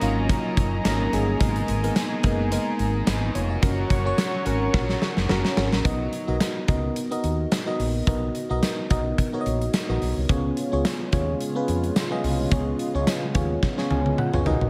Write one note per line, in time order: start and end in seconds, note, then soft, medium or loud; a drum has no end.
0.00 0.34 G#1 loud
0.00 0.29 F#3 medium
0.00 0.02 A#3 medium
0.00 0.28 A#3 medium
0.00 0.02 C#4 medium
0.00 0.28 C#4 medium
0.00 0.29 C#4 soft
0.00 0.02 D#4 medium
0.00 0.28 D#4 medium
0.00 0.02 F4 loud
0.00 0.28 F4 loud
0.00 0.29 F#4 medium
0.00 0.30 A#4 loud
0.00 3.59 D#5 medium
0.00 3.59 G#5 medium
0.00 5.81 A#5 medium
0.00 1.36 C#6 medium
0.00 closed hi-hat medium
0.29 0.83 F#3 medium
0.29 0.82 F#3 medium
0.29 0.82 A#3 medium
0.29 0.82 C#4 medium
0.29 0.84 C#4 medium
0.29 0.82 D#4 medium
0.29 0.86 F#4 medium
0.29 0.82 A#4 loud
0.29 kick loud
0.29 closed hi-hat loud
0.57 0.78 F#1 loud
0.57 kick loud
0.57 closed hi-hat medium
0.84 1.06 G#1 medium
0.84 1.39 F#3 medium
0.84 1.11 F#3 medium
0.84 1.11 A#3 medium
0.84 1.11 C#4 medium
0.84 1.40 C#4 medium
0.84 1.12 D#4 medium
0.84 1.41 F#4 medium
0.84 1.12 A#4 loud
0.84 snare loud
0.84 closed hi-hat medium
0.84 tambourine medium
1.12 1.34 G1 medium
1.12 1.39 F#3 medium
1.12 1.39 A#3 medium
1.12 1.39 C#4 medium
1.12 1.39 D#4 medium
1.12 1.40 G#4 loud
1.12 closed hi-hat medium
1.40 1.61 G#1 loud
1.40 2.23 G#3 medium
1.40 1.81 G#3 medium
1.40 1.81 A#3 medium
1.40 1.81 B3 medium
1.40 2.24 D#4 loud
1.40 1.81 D#4 medium
1.40 2.22 G#4 loud
1.40 1.81 A#4 loud
1.40 kick loud
1.40 closed hi-hat loud
1.56 closed hi-hat medium
1.68 1.89 G#1 loud
1.68 closed hi-hat medium
1.83 2.21 G#3 medium
1.83 2.22 A#3 medium
1.83 2.22 B3 medium
1.83 2.22 D#4 medium
1.83 2.22 A#4 loud
1.83 closed hi-hat medium
1.96 snare loud
1.96 closed hi-hat medium
1.96 tambourine medium
2.23 2.56 F#1 loud
2.23 2.50 G#3 medium
2.23 2.50 A#3 medium
2.23 2.50 B3 medium
2.23 2.50 D#4 medium
2.23 2.51 D#4 soft
2.23 2.51 G#4 medium
2.23 2.51 A#4 loud
2.23 kick loud
2.23 closed hi-hat medium
2.51 3.05 G#3 medium
2.51 3.04 G#3 medium
2.51 3.04 A#3 medium
2.51 3.04 B3 medium
2.51 3.04 D#4 medium
2.51 3.06 D#4 medium
2.51 3.08 G#4 medium
2.51 3.05 A#4 loud
2.51 closed hi-hat loud
2.79 3.00 G#1 loud
2.79 closed hi-hat medium
3.06 3.28 G#1 loud
3.06 3.62 G#3 medium
3.06 3.63 D#4 medium
3.06 3.34 D#4 medium
3.06 3.64 G#4 medium
3.06 3.34 B4 medium
3.06 snare loud
3.06 closed hi-hat loud
3.06 tambourine medium
3.35 3.56 F1 loud
3.35 3.50 F4 medium
3.35 3.49 C#5 medium
3.35 closed hi-hat medium
3.50 3.61 F#4 medium
3.50 3.77 D#5 medium
3.62 3.84 F#1 loud
3.62 4.73 F#3 medium
3.62 4.03 C#4 medium
3.62 4.46 C#4 medium
3.62 4.03 F#4 medium
3.62 4.45 F#4 loud
3.62 4.03 A#4 loud
3.62 5.83 C#5 medium
3.62 5.83 F#5 medium
3.62 5.83 C#6 medium
3.62 kick loud
3.62 closed hi-hat loud
3.90 4.11 F#1 loud
3.90 kick medium
3.90 closed hi-hat medium
4.05 4.44 C#4 medium
4.05 4.44 F#4 medium
4.05 4.44 C#5 loud
4.18 snare loud
4.18 closed hi-hat medium
4.18 tambourine medium
4.45 4.67 G#1 medium
4.45 4.72 C#4 medium
4.45 4.74 C#4 soft
4.45 4.73 F#4 medium
4.45 4.72 F#4 medium
4.45 4.73 A#4 loud
4.45 closed hi-hat medium
4.73 4.95 A#1 loud
4.73 5.28 F#3 medium
4.73 5.26 C#4 medium
4.73 5.29 C#4 medium
4.73 5.26 F#4 medium
4.73 5.31 F#4 medium
4.73 5.27 A#4 loud
4.73 kick loud
4.73 snare medium
4.89 snare medium
5.02 muted fretless electric bass stroke soft
5.02 snare medium
5.17 5.26 F#1 loud
5.17 snare medium
5.28 5.41 F#1 loud
5.28 6.36 F#3 medium
5.28 5.55 C#4 medium
5.28 5.85 C#4 medium
5.28 5.56 F#4 medium
5.28 6.36 F#4 medium
5.28 5.56 A#4 loud
5.28 snare loud
5.45 snare medium
5.57 5.69 G#1 loud
5.57 5.83 C#4 medium
5.57 5.83 F#4 medium
5.57 5.84 A#4 medium
5.57 snare loud
5.73 5.82 A#1 medium
5.73 snare loud
5.84 6.06 B1 loud
5.84 6.25 B3 medium
5.84 6.25 D#4 medium
5.84 6.25 F#4 medium
5.84 6.25 A#4 medium
5.84 6.26 D#5 medium
5.84 kick loud
5.84 closed hi-hat medium
6.13 closed hi-hat medium
6.27 6.37 B1 medium
6.27 6.66 B3 medium
6.27 6.66 D#4 medium
6.27 6.66 F#4 medium
6.27 6.66 A#4 medium
6.27 6.66 D#5 medium
6.40 snare loud
6.40 closed hi-hat medium
6.40 tambourine medium
6.68 6.89 C#2 medium
6.68 7.08 B3 medium
6.68 7.08 D#4 medium
6.68 7.09 F#4 medium
6.68 7.09 A#4 medium
6.68 7.09 D#5 medium
6.68 kick loud
6.68 closed hi-hat medium
6.96 closed hi-hat medium
7.11 7.63 B3 medium
7.11 7.63 D#4 medium
7.11 7.63 F#4 medium
7.11 7.63 A#4 medium
7.11 7.64 D#5 medium
7.11 closed hi-hat medium
7.24 7.45 D#2 medium
7.24 closed hi-hat medium
7.52 snare loud
7.52 closed hi-hat loud
7.52 tambourine medium
7.66 8.05 B3 medium
7.66 8.05 D#4 medium
7.66 8.05 F#4 medium
7.66 8.05 A#4 medium
7.66 8.05 D#5 medium
7.79 8.00 A#1 medium
7.79 open hi-hat medium
8.07 8.28 B1 loud
8.07 8.47 B3 medium
8.07 8.47 D#4 medium
8.07 8.48 F#4 medium
8.07 8.48 A#4 medium
8.07 8.48 D#5 loud
8.07 kick loud
8.07 closed hi-hat medium
8.35 closed hi-hat medium
8.49 8.60 B1 loud
8.49 8.88 B3 medium
8.49 8.88 D#4 medium
8.49 8.88 F#4 medium
8.49 8.88 A#4 medium
8.49 8.89 D#5 loud
8.63 snare loud
8.63 closed hi-hat medium
8.63 tambourine medium
8.90 9.11 B1 medium
8.90 9.31 B3 medium
8.90 9.31 D#4 medium
8.90 9.31 F#4 medium
8.90 9.31 A#4 medium
8.90 9.31 D#5 loud
8.90 kick loud
8.90 closed hi-hat medium
9.18 kick medium
9.18 closed hi-hat medium
9.33 9.85 B3 medium
9.33 9.85 D#4 medium
9.33 9.86 F#4 medium
9.33 9.86 A#4 medium
9.33 9.40 C#5 medium
9.41 9.89 D#5 loud
9.46 9.67 A#1 loud
9.46 closed hi-hat medium
9.61 closed hi-hat medium
9.73 snare loud
9.73 closed hi-hat loud
9.73 tambourine medium
9.89 9.99 A#1 loud
9.89 10.27 B3 medium
9.89 10.27 D#4 medium
9.89 10.27 F#4 medium
9.89 10.27 A#4 medium
9.89 10.28 D#5 medium
10.02 10.13 B1 medium
10.02 open hi-hat medium
10.17 10.26 C2 medium
10.29 10.50 C#2 loud
10.29 14.42 C#3 medium
10.29 14.42 G#3 medium
10.29 10.70 B3 medium
10.29 14.70 B3 medium
10.29 10.70 C#4 medium
10.29 14.42 F4 medium
10.29 10.70 F4 medium
10.29 10.70 G#4 medium
10.29 10.70 C#5 loud
10.29 kick loud
10.29 closed hi-hat medium
10.57 closed hi-hat medium
10.72 10.82 C#2 medium
10.72 11.10 B3 medium
10.72 11.10 C#4 medium
10.72 11.10 F4 medium
10.72 11.11 G#4 medium
10.72 11.11 C#5 medium
10.85 snare loud
10.85 closed hi-hat medium
10.85 tambourine medium
11.12 11.34 D#2 loud
11.12 11.53 B3 medium
11.12 11.53 C#4 medium
11.12 11.53 F4 medium
11.12 11.53 G#4 medium
11.12 11.53 C#5 loud
11.12 kick loud
11.12 closed hi-hat medium
11.40 closed hi-hat loud
11.55 12.07 B3 medium
11.55 12.08 C#4 medium
11.55 12.08 F4 medium
11.55 12.08 G#4 medium
11.55 12.08 B4 loud
11.68 11.89 F2 medium
11.68 closed hi-hat medium
11.84 closed hi-hat soft
11.96 snare loud
11.96 closed hi-hat loud
11.96 tambourine medium
12.11 12.49 B3 medium
12.11 12.49 C#4 medium
12.11 12.49 F4 medium
12.11 12.49 G#4 medium
12.11 12.50 D#5 medium
12.24 12.45 C2 medium
12.24 open hi-hat medium
12.51 12.72 C#2 loud
12.51 12.92 B3 medium
12.51 12.92 C#4 medium
12.51 12.92 F4 medium
12.51 12.92 G#4 medium
12.51 12.92 C#5 loud
12.51 kick loud
12.51 closed hi-hat loud
12.79 closed hi-hat medium
12.94 13.04 C#2 loud
12.94 13.33 B3 medium
12.94 13.33 C#4 medium
12.94 13.33 F4 medium
12.94 13.33 G#4 medium
12.94 13.33 C#5 medium
13.07 snare loud
13.07 closed hi-hat medium
13.07 tambourine medium
13.34 13.56 D#2 loud
13.34 13.75 B3 medium
13.34 13.75 C#4 medium
13.34 13.75 F4 medium
13.34 13.75 G#4 medium
13.34 13.76 C#5 medium
13.34 kick loud
13.34 closed hi-hat medium
13.63 kick loud
13.63 snare medium
13.77 14.30 B3 medium
13.77 14.30 C#4 medium
13.77 14.30 F4 medium
13.77 14.30 G#4 medium
13.77 14.30 C#5 medium
13.77 snare medium
13.91 14.11 C#2 medium
13.91 14.16 G#5 medium
13.91 high tom medium
14.06 high tom medium
14.18 14.70 F#5 medium
14.18 mid tom medium
14.33 14.43 C#2 medium
14.33 14.44 B3 medium
14.33 14.46 C#4 medium
14.33 14.46 F4 medium
14.33 14.46 G#4 medium
14.33 14.46 C#5 medium
14.33 mid tom medium
14.46 14.58 B1 loud
14.46 14.70 A#3 medium
14.46 14.70 B3 medium
14.46 14.70 D#4 medium
14.46 14.70 F#4 medium
14.46 14.70 A#4 medium
14.46 14.70 D#5 medium
14.46 floor tom loud
14.61 14.70 A#1 medium
14.61 floor tom medium